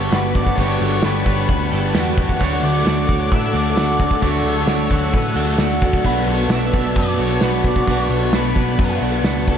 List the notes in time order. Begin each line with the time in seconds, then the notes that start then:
Already playing: G2 D3 G3 B3 D4 F#4 G4 A4 B4 C#5 F#5 A5 C#6
0.00 tambourine
0.11 G1 G2 D3 G3 B3 D4 F#4 G4 B4, snare, tambourine, crash
0.16 G3
0.24 tambourine
0.34 G3 F#4 D5, kick, tambourine, crash
0.39 D3
0.46 kick
0.56 G1 G2 D3 G3 B3 D4 F#4 C#5, kick, crash
0.61 G3 G4
0.79 G1 D3 G3 A4, tambourine, crash
0.92 tambourine
1.02 G1 G2 D3 G3 B3 D4 G4 B4 C#5, snare, tambourine, crash
1.24 G1 G2 D3 G3 B3 D4 G4 C#5, kick, tambourine, crash
1.48 D2 G2 D3 G3 B4, kick, crash
1.71 G1 D3 G3 B3 D4 G4 A4, tambourine, crash
1.83 tambourine
1.93 E2 G2 D3 G3 B3 D4 F#4 G4, snare, tambourine, crash
1.97 G3
2.06 tambourine
2.16 D3 G3 F#4, kick, tambourine, crash
2.29 kick
2.38 D2 D3 F#3 A3 D4 F#4 A4 C#5 D6, kick, crash
2.42 F#4
2.61 D2 A3 D4 A4 D5, tambourine
2.65 crash
2.84 D2 D3 F#3 A3 D4 F#4 C#5, snare, tambourine, crash
3.07 D2 D3 A3 D4 F#4 C#5, kick, tambourine, crash
3.29 A2 D3 A3 D4 B4 E5, kick, crash
3.52 D2 A3 D4 F#4 A4 D5, tambourine, crash
3.65 tambourine
3.76 D2 D3 F#3 A3 D4 F#4, snare, tambourine, crash
3.80 D4
3.99 D4 F#4, kick, tambourine, crash
4.03 A3
4.11 kick
4.21 D2 D3 F#3 A3 D4 F#4 C#5 E6, kick, tambourine, crash
4.26 D4
4.34 tambourine
4.44 D2 D4 A4, tambourine, crash
4.49 A3
4.56 tambourine
4.67 D2 D3 F#3 A3 D4 F#4 C#5, snare, tambourine, crash
4.89 D2 D3 A3 D4 F#4 C#5 F#5, kick, crash
5.01 tambourine
5.13 A2 D3 A3 D4 B4, kick, crash
5.35 D2 A3 D4 F#4 A4, tambourine, crash
5.47 tambourine
5.58 D2 D3 F#3 A3 D4 F#4, snare, tambourine, crash
5.70 tambourine
5.81 A3 D4 F#4, kick, tambourine, crash
5.92 kick, tambourine
6.02 B1 B2 F#3 B3 D4 B4 A5, kick, crash
6.06 B3 F#4 B4
6.26 B1 F#3 B3 A4 C#5, tambourine, crash
6.38 tambourine
6.48 B1 B2 F#3 B3 D5 E5, snare, tambourine, crash
6.52 D4 F#4
6.71 B1 B2 F#3 B3 D4 F#4 D5, kick, crash
6.76 B3
6.94 F#2 B2 F#3 B3 B4, kick, crash
6.98 D5
7.17 B1 F#3 B3 D4 F#4 A4 C#5, tambourine, crash
7.21 B3
7.29 tambourine
7.40 B1 B2 F#3 B3 F#4 B4, snare, tambourine, crash
7.44 D4 F#4
7.51 tambourine
7.63 F#3 B3 F#4 D5, kick, tambourine, crash
7.75 kick, tambourine
7.86 B1 B2 F#3 B3 F#4 D5, kick, crash
7.90 D4 F#4
7.99 C#5
8.08 B1 F#3 B3 A4, crash
8.32 B1 B2 F#3 B3 D4 F#4 B4 D5, snare, tambourine, crash
8.55 B1 B2 F#3 B3 D4 F#4 D5, kick, tambourine, crash
8.78 F#2 B2 F#3 B3 B4, kick, crash
9.01 B1 B3 D4 F#4 A4, tambourine, crash
9.05 F#3
9.12 tambourine
9.23 C#2 B2 F#3 B3 D4 F#4, snare, tambourine, crash
9.35 tambourine
9.46 B3 F#4 A4, kick, tambourine, crash
9.50 F#3